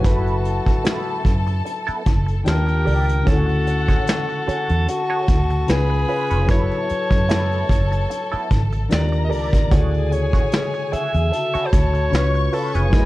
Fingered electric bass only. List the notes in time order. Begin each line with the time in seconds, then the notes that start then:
0.05 F#1
1.25 F#2
1.89 muted fingered electric bass stroke
2.07 F#1
2.47 D#2
2.87 C#2
3.27 D2
4.48 muted fingered electric bass stroke
4.70 E2
5.29 D2
5.69 C#2
6.31 F1
6.49 F#1
6.91 muted fingered electric bass stroke
7.11 F#2
7.70 F#1
8.33 muted fingered electric bass stroke
8.52 G#1
8.92 D#2
9.32 C#2
9.72 D2
10.93 muted fingered electric bass stroke
11.14 E2
11.55 muted fingered electric bass stroke
11.73 D2
12.12 C#2
12.75 F1
12.93 F#1